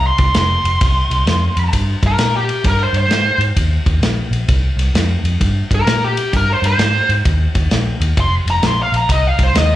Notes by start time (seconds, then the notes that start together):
0.07 C6
0.18 C2, kick, ride
0.34 F1 C6, snare, ride
0.64 F1, ride
0.81 C2, kick, ride
1.10 C2, ride
1.26 F2, snare, ride
1.57 F2, ride
1.73 G2, kick, ride
2.03 G2 A#4, kick, ride
2.18 A#2, snare, ride
2.37 G4
2.49 ride
2.64 G2 A#4, kick, ride
2.83 C5
2.93 G2, ride
2.98 C5
3.08 G#2, snare, ride
3.38 G#2, ride
3.56 D#2, kick, ride
3.86 D#2, kick, ride
4.00 A#1, snare, ride
4.31 A#1, ride
4.48 C2, kick, ride
4.77 C2, snare, ride
4.94 F2, snare, ride
5.24 F2, ride
5.40 G2, kick, ride
5.71 G2 A#4, kick, ride
5.87 A#2, snare, ride
6.04 G4
6.17 ride
6.33 G2 A#4, kick, ride
6.53 C5
6.62 G2, snare, ride
6.67 C5
6.78 G#2, snare, ride
7.09 G#2, ride
7.25 D#2, kick, ride
7.55 D#2, kick, ride
7.71 A#1, snare, ride
8.00 D#2, ride
8.17 F1 C6, kick, ride
8.46 F1, snare, ride
8.50 A#5
8.63 A#1 C6, snare, ride
8.82 F5
8.92 A#1, ride
8.96 A#5
9.09 C2 D#5, kick, ride
9.27 F5
9.39 C2, kick, ride
9.43 C5
9.54 D#2 D#5, snare, ride